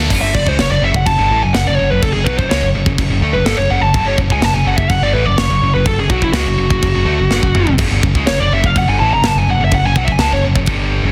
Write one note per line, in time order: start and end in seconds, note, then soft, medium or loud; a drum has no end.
0.00 0.10 D4 medium
0.10 0.20 F#1 loud
0.10 0.21 F#2 medium
0.10 0.21 C#3 medium
0.10 kick loud
0.10 crash loud
0.10 crash medium
0.21 0.33 G1 medium
0.21 0.33 G2 medium
0.21 0.33 D3 loud
0.21 0.33 E5 medium
0.34 0.46 F#1 medium
0.34 0.46 F#2 medium
0.34 0.45 C#3 medium
0.34 0.48 D5 loud
0.34 kick medium
0.46 0.57 C#2 medium
0.46 0.57 C#3 medium
0.46 0.58 G#3 medium
0.46 0.60 C5 medium
0.46 kick medium
0.58 0.69 F#1 medium
0.58 0.68 F#2 medium
0.58 0.69 C#3 medium
0.58 0.71 C#5 medium
0.58 snare loud
0.58 crash medium
0.69 0.80 F#1 medium
0.69 0.81 F#2 medium
0.69 0.81 C#3 medium
0.69 0.82 D5 medium
0.81 0.93 F#1 medium
0.81 0.92 F#2 medium
0.81 0.93 C#3 loud
0.81 0.95 E5 medium
0.93 1.05 F#1 medium
0.93 1.05 F#2 medium
0.93 1.05 C#3 medium
0.93 1.06 F#5 medium
0.93 kick medium
1.06 1.17 F#1 medium
1.06 1.17 F#2 medium
1.06 1.18 C#3 medium
1.06 1.42 A5 loud
1.06 kick medium
1.06 crash medium
1.18 1.30 G1 loud
1.18 1.29 G2 medium
1.18 1.30 D3 medium
1.31 1.42 A1 medium
1.31 1.42 A2 medium
1.31 1.42 E3 medium
1.43 1.54 F#1 medium
1.43 1.54 F#2 medium
1.43 1.53 C#3 medium
1.43 1.54 G#5 medium
1.53 1.66 F#1 medium
1.53 1.65 F#2 medium
1.53 1.66 C#3 medium
1.53 1.65 F#5 medium
1.53 snare loud
1.53 crash medium
1.66 1.78 F#1 medium
1.66 1.78 F#2 medium
1.66 1.78 C#3 medium
1.66 1.76 D5 medium
1.76 1.90 F#2 medium
1.76 1.91 C#3 medium
1.76 1.90 C#5 medium
1.81 1.91 F#1 medium
1.90 2.02 F#1 medium
1.90 2.03 F#2 medium
1.90 2.03 C#3 medium
1.90 2.02 B4 medium
2.02 2.13 F#1 medium
2.02 2.14 F#2 medium
2.02 2.15 C#3 medium
2.02 2.12 A4 medium
2.02 kick loud
2.02 crash medium
2.13 2.26 F#1 medium
2.13 2.27 F#2 medium
2.13 2.26 C#3 medium
2.13 2.25 G#4 medium
2.24 2.37 B1 medium
2.24 2.38 B2 medium
2.24 2.38 F#3 loud
2.24 2.37 B4 medium
2.24 kick medium
2.38 2.49 F#1 medium
2.38 2.50 F#2 medium
2.38 2.49 C#3 medium
2.38 2.50 C5 medium
2.38 kick medium
2.50 2.62 C#2 medium
2.50 2.61 C#3 loud
2.50 2.62 G#3 loud
2.50 2.64 C#5 medium
2.50 snare loud
2.50 crash medium
2.62 2.73 F#1 medium
2.62 2.74 F#2 medium
2.62 2.75 C#3 medium
2.74 2.85 F#1 medium
2.74 2.85 F#2 medium
2.74 2.86 C#3 medium
2.86 2.97 F#1 medium
2.86 2.97 F#2 medium
2.86 2.97 C#3 medium
2.86 kick medium
2.98 3.09 F#1 medium
2.98 3.09 F#2 medium
2.98 3.10 C#3 medium
2.98 kick loud
2.98 crash medium
3.09 3.20 F#1 medium
3.09 3.22 F#2 medium
3.09 3.22 C#3 medium
3.21 3.33 D2 medium
3.21 3.34 D3 medium
3.21 3.34 A3 loud
3.33 3.44 F#1 medium
3.33 3.45 F#2 medium
3.33 3.45 C#3 medium
3.33 3.45 B4 medium
3.45 3.56 G1 medium
3.45 3.57 G2 loud
3.45 3.57 D3 loud
3.45 3.57 A4 medium
3.45 snare loud
3.45 crash medium
3.57 3.69 F#1 medium
3.57 3.69 F#2 medium
3.57 3.70 C#3 medium
3.57 3.69 C#5 medium
3.70 3.80 F#1 loud
3.70 3.82 F#2 medium
3.70 3.82 C#3 medium
3.70 3.81 F#5 loud
3.80 3.92 F#1 medium
3.80 3.93 F#2 medium
3.80 3.94 C#3 medium
3.80 3.93 A5 medium
3.94 4.03 F#1 loud
3.94 4.06 F#2 loud
3.94 4.06 C#3 loud
3.94 4.06 A5 medium
3.94 kick loud
3.94 crash medium
4.04 4.16 G1 medium
4.04 4.18 G2 loud
4.04 4.18 D3 loud
4.04 4.14 C#5 medium
4.18 4.29 F#1 medium
4.18 4.31 F#2 medium
4.18 4.30 C#3 medium
4.18 kick medium
4.30 4.40 C#2 medium
4.30 4.42 C#3 medium
4.30 4.42 G#3 medium
4.30 4.44 G#5 medium
4.30 kick medium
4.41 4.52 F#1 medium
4.41 4.54 F#2 medium
4.41 4.54 C#3 medium
4.41 4.54 A5 loud
4.41 snare loud
4.41 crash medium
4.52 4.64 F#1 medium
4.52 4.64 F#2 medium
4.52 4.64 C#3 medium
4.52 4.66 G#5 medium
4.65 4.76 F#1 medium
4.65 4.77 F#2 medium
4.65 4.77 C#3 medium
4.65 4.77 F#5 medium
4.77 4.89 F#1 medium
4.77 4.88 F#2 medium
4.77 4.89 C#3 medium
4.77 4.90 E5 loud
4.77 kick medium
4.89 5.00 F#1 medium
4.89 5.02 F#2 medium
4.89 5.02 C#3 medium
4.89 5.02 F#5 medium
4.89 kick medium
4.89 crash medium
5.01 5.13 G1 medium
5.01 5.14 G2 medium
5.01 5.14 D3 medium
5.01 5.14 D5 medium
5.13 5.25 A1 medium
5.13 5.26 A2 medium
5.13 5.26 E3 loud
5.13 5.26 B4 medium
5.26 5.37 F#1 medium
5.26 5.38 F#2 medium
5.26 5.39 C#3 medium
5.26 5.39 D5 loud
5.38 5.49 F#2 medium
5.38 5.49 C#3 medium
5.38 5.74 C#5 medium
5.38 snare loud
5.38 crash medium
5.49 5.61 F#1 medium
5.49 5.62 F#2 medium
5.49 5.63 C#3 medium
5.62 5.73 F#1 medium
5.62 5.74 F#2 medium
5.62 5.75 C#3 medium
5.74 5.85 F#1 medium
5.74 5.86 F#2 medium
5.74 5.86 C#3 medium
5.74 5.86 B4 medium
5.85 5.96 F#1 medium
5.85 5.98 F#2 medium
5.85 5.98 C#3 medium
5.85 5.98 A4 medium
5.85 kick loud
5.85 crash medium
5.97 6.09 F#1 medium
5.97 6.11 F#2 medium
5.97 6.11 C#3 medium
5.97 6.10 G#4 medium
6.09 6.21 B1 medium
6.09 6.22 B2 medium
6.09 6.23 F#3 medium
6.09 6.22 F#4 medium
6.09 kick medium
6.22 6.32 F#1 medium
6.22 6.35 F#2 medium
6.22 6.34 C#3 medium
6.22 6.34 E4 medium
6.22 kick medium
6.32 6.45 C#2 medium
6.32 6.46 C#3 medium
6.32 6.47 G#3 loud
6.32 7.74 F#4 medium
6.32 snare loud
6.32 crash medium
6.46 6.57 F#1 medium
6.46 6.57 F#2 medium
6.46 6.57 C#3 medium
6.58 6.70 F#1 medium
6.58 6.70 F#2 medium
6.58 6.70 C#3 medium
6.70 6.82 F#1 medium
6.70 6.81 F#2 medium
6.70 6.82 C#3 medium
6.70 kick medium
6.82 6.94 F#1 medium
6.82 6.93 F#2 medium
6.82 6.94 C#3 medium
6.82 kick loud
6.82 crash medium
6.95 7.04 F#1 medium
6.95 7.07 F#2 medium
6.95 7.05 C#3 medium
7.05 7.17 D2 medium
7.05 7.18 D3 medium
7.05 7.18 A3 medium
7.19 7.29 F#1 medium
7.19 7.30 F#2 medium
7.19 7.31 C#3 medium
7.30 7.42 G1 medium
7.30 7.42 G2 medium
7.30 7.42 D3 loud
7.30 snare medium
7.42 7.54 F#1 medium
7.42 7.53 F#2 medium
7.42 7.54 C#3 medium
7.42 kick medium
7.54 7.66 F#1 loud
7.54 7.66 F#2 medium
7.54 7.67 C#3 medium
7.54 mid tom medium
7.67 7.78 F#1 medium
7.67 7.78 F#2 medium
7.67 7.79 C#3 medium
7.67 floor tom medium
7.78 7.90 F#1 medium
7.78 7.90 F#2 medium
7.78 7.91 C#3 loud
7.78 kick loud
7.78 splash medium
7.78 crash medium
7.91 8.02 G1 medium
7.91 8.02 G2 medium
7.91 8.03 D3 loud
8.03 8.14 F#1 medium
8.03 8.15 F#2 medium
8.03 8.15 C#3 medium
8.03 kick medium
8.15 8.26 C#2 medium
8.15 8.27 C#3 medium
8.15 8.27 G#3 medium
8.15 kick medium
8.27 8.39 F#1 medium
8.27 8.40 F#2 medium
8.27 8.40 C#3 medium
8.27 8.40 C#5 medium
8.27 snare loud
8.27 crash medium
8.40 8.51 F#1 medium
8.40 8.51 F#2 medium
8.40 8.52 C#3 medium
8.40 8.51 D5 medium
8.51 8.63 F#1 medium
8.51 8.63 F#2 medium
8.51 8.63 C#3 loud
8.51 8.66 E5 medium
8.64 8.75 F#1 medium
8.64 8.76 F#2 medium
8.64 8.76 C#3 medium
8.64 8.76 F5 medium
8.64 kick medium
8.76 8.87 F#1 medium
8.76 8.87 F#2 medium
8.76 8.88 C#3 medium
8.76 8.88 F#5 loud
8.76 kick loud
8.76 crash medium
8.88 8.99 G1 loud
8.88 8.99 G2 medium
8.88 8.99 D3 medium
8.88 8.99 G#5 medium
8.99 9.11 A1 medium
8.99 9.12 A2 medium
8.99 9.12 E3 loud
8.99 9.11 A5 medium
9.12 9.21 F#1 medium
9.12 9.24 F#2 medium
9.12 9.25 C#3 medium
9.12 9.24 A#5 loud
9.22 9.33 F#1 medium
9.22 9.36 F#2 medium
9.22 9.37 C#3 medium
9.22 snare medium
9.22 crash medium
9.27 9.37 A5 loud
9.34 9.45 F#1 medium
9.34 9.47 F#2 medium
9.34 9.48 C#3 medium
9.34 9.48 G#5 medium
9.46 9.56 F#1 medium
9.46 9.59 F#2 medium
9.46 9.60 C#3 medium
9.50 9.61 F#5 medium
9.57 9.69 F#1 medium
9.57 9.70 F#2 medium
9.57 9.71 C#3 medium
9.65 9.74 E5 medium
9.71 9.80 F#1 medium
9.71 9.84 F#2 medium
9.71 9.84 C#3 medium
9.71 9.85 F#5 medium
9.71 kick loud
9.71 crash medium
9.81 9.93 F#1 medium
9.86 9.97 F#2 medium
9.86 9.97 C#3 medium
9.86 9.97 G#5 medium
9.95 10.07 B1 medium
9.95 10.08 B2 medium
9.95 10.08 F#3 loud
9.95 10.05 F#5 loud
9.95 kick medium
10.05 10.18 F#1 medium
10.05 10.12 E5 loud
10.05 kick medium
10.09 10.20 F#2 medium
10.09 10.20 C#3 medium
10.09 10.20 G#5 medium
10.19 10.30 C#2 medium
10.19 10.32 C#3 medium
10.19 10.32 G#3 loud
10.19 10.32 A5 loud
10.19 snare loud
10.19 crash medium
10.31 10.42 F#1 medium
10.31 10.43 F#2 medium
10.31 10.44 C#3 medium
10.31 10.39 C#5 medium
10.43 10.54 F#1 medium
10.43 10.55 F#2 medium
10.43 10.56 C#3 medium
10.55 10.67 F#1 medium
10.55 10.68 F#2 medium
10.55 10.68 C#3 medium
10.55 kick medium
10.66 11.01 G1 medium
10.66 11.03 G2 loud
10.66 11.04 D3 loud
10.66 11.04 G3 loud
10.66 kick loud
10.66 crash medium
11.03 11.12 F#1 loud
11.03 11.12 F#2 medium
11.03 11.12 C#3 loud